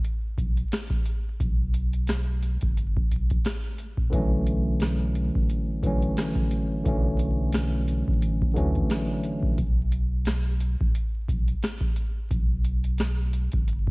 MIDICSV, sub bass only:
0, 0, Header, 1, 2, 480
1, 0, Start_track
1, 0, Key_signature, 2, "minor"
1, 0, Tempo, 681818
1, 985, Time_signature, 4, 2, 24, 8
1, 9791, End_track
2, 0, Start_track
2, 0, Title_t, "Sub bass"
2, 0, Program_c, 0, 38
2, 268, Note_on_c, 0, 35, 98
2, 452, Note_off_c, 0, 35, 0
2, 989, Note_on_c, 0, 35, 103
2, 1812, Note_off_c, 0, 35, 0
2, 1852, Note_on_c, 0, 31, 98
2, 2114, Note_off_c, 0, 31, 0
2, 2190, Note_on_c, 0, 35, 91
2, 2373, Note_off_c, 0, 35, 0
2, 2800, Note_on_c, 0, 34, 90
2, 2881, Note_off_c, 0, 34, 0
2, 2908, Note_on_c, 0, 35, 105
2, 3732, Note_off_c, 0, 35, 0
2, 3771, Note_on_c, 0, 33, 88
2, 3848, Note_off_c, 0, 33, 0
2, 4107, Note_on_c, 0, 35, 96
2, 4291, Note_off_c, 0, 35, 0
2, 4828, Note_on_c, 0, 35, 102
2, 5652, Note_off_c, 0, 35, 0
2, 5691, Note_on_c, 0, 33, 96
2, 5954, Note_off_c, 0, 33, 0
2, 6028, Note_on_c, 0, 38, 89
2, 6212, Note_off_c, 0, 38, 0
2, 6639, Note_on_c, 0, 34, 97
2, 6721, Note_off_c, 0, 34, 0
2, 6746, Note_on_c, 0, 35, 114
2, 7571, Note_off_c, 0, 35, 0
2, 7610, Note_on_c, 0, 33, 96
2, 7688, Note_off_c, 0, 33, 0
2, 7947, Note_on_c, 0, 35, 96
2, 8131, Note_off_c, 0, 35, 0
2, 8667, Note_on_c, 0, 35, 103
2, 9491, Note_off_c, 0, 35, 0
2, 9530, Note_on_c, 0, 31, 96
2, 9791, Note_off_c, 0, 31, 0
2, 9791, End_track
0, 0, End_of_file